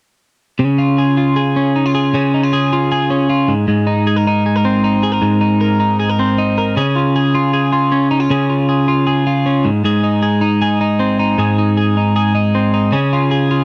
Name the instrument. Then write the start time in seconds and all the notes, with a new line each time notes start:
clean electric guitar
0.59 C#3
0.78 F4
0.98 G#4
1.17 F4
1.36 G#4
1.56 C#4
1.76 D#4
1.86 F4
1.95 G#4
2.14 C#3
2.34 D#4
2.43 F4
2.53 G#4
2.73 F4
2.92 G#4
3.10 C#4
3.30 F4
3.48 G#2
3.68 G#2
3.87 D#4
4.07 G#4
4.16 A#4
4.27 D#4
4.46 G#4
4.56 A#4
4.65 C4
4.84 D#4
5.03 G#4
5.12 A#4
5.22 G#2
5.41 D#4
5.61 A#4
5.80 D#4
6.00 G#4
6.10 A#4
6.19 C4
6.38 D#4
6.58 A#4
6.77 C#3 G#4
6.96 F4
7.16 G#4
7.35 F4
7.53 G#4
7.72 F4
7.92 C#4
8.11 D#4
8.20 F4
8.30 C#3 G#4
8.50 F4
8.69 G#4
8.88 F4
9.07 G#4
9.27 F4
9.46 C#4
9.65 G#2
9.84 G#2 G#4
10.04 D#4
10.23 G#4
10.41 D#4
10.62 G#4
10.81 D#4
10.99 C4
11.19 D#4
11.38 G#2 G#4
11.58 D#4
11.77 G#4
11.97 D#4
12.16 G#4
12.35 D#4
12.55 C4
12.74 D#4
12.92 C#3 G#4
13.13 F4
13.31 G#4
13.51 F4